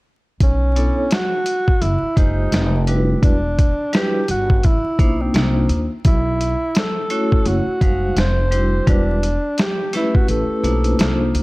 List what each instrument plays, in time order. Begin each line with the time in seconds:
0.40 upright bass B1, tenor saxophone C#4, kick, closed hi-hat
0.76 vibraphone B3 D4 E4 A4 C#5, closed hi-hat
1.11 tenor saxophone F#4, snare, closed hi-hat
1.46 closed hi-hat
1.68 kick
1.81 upright bass F#1, tenor saxophone E4, closed hi-hat
2.02 muted upright bass stroke
2.16 upright bass F#1, vibraphone G#3 D#4 F4 G4 C5, tenor saxophone D#4, kick, closed hi-hat
2.52 upright bass F1, snare, closed hi-hat
2.87 vibraphone G3 D4 E4 F#4 B4, closed hi-hat
3.23 upright bass E1, tenor saxophone D4, kick, closed hi-hat
3.59 kick, closed hi-hat
3.93 vibraphone G3 D4 E4 F#4 B4, tenor saxophone G4, snare, closed hi-hat
4.28 upright bass G1, tenor saxophone F#4, closed hi-hat
4.50 kick
4.63 upright bass A1, tenor saxophone E4, kick, closed hi-hat
4.84 muted upright bass stroke
4.99 upright bass B1, vibraphone A#3 D4 D#4 F4 C5, kick, closed hi-hat
5.21 tenor saxophone C4
5.34 upright bass C2, vibraphone A#3 D4 D#4 F4 C5, snare, closed hi-hat
5.69 upright bass D#2, closed hi-hat
6.05 upright bass B1, tenor saxophone E4, kick, closed hi-hat
6.41 closed hi-hat
6.75 tenor saxophone A4, snare, closed hi-hat
7.10 vibraphone A3 C#4 E4 F#4 C#5, closed hi-hat
7.32 kick
7.46 upright bass F#1, tenor saxophone F#4, closed hi-hat
7.66 muted upright bass stroke
7.81 upright bass F#1, vibraphone G3 G#3 D#4 C5 F5, kick, closed hi-hat
8.16 upright bass F1, tenor saxophone C5, snare, closed hi-hat
8.51 vibraphone G3 D4 E4 F#4 C5, closed hi-hat
8.87 upright bass E1, vibraphone G3 D4 E4 F#4 B4, tenor saxophone D4, kick, closed hi-hat
9.23 closed hi-hat
9.58 tenor saxophone G4, snare, closed hi-hat
9.93 vibraphone A3 C#4 E4 G4 B4, tenor saxophone E4, snare, closed hi-hat
10.15 tenor saxophone F#4, kick
10.28 upright bass A1, tenor saxophone A4, closed hi-hat
10.49 muted upright bass stroke
10.63 upright bass B1, vibraphone A#3 D4 D#4 F4 C5, closed hi-hat
10.84 closed hi-hat
10.99 upright bass C2, vibraphone A#3 D4 D#4 F4 C5, snare, closed hi-hat
11.34 upright bass D2, closed hi-hat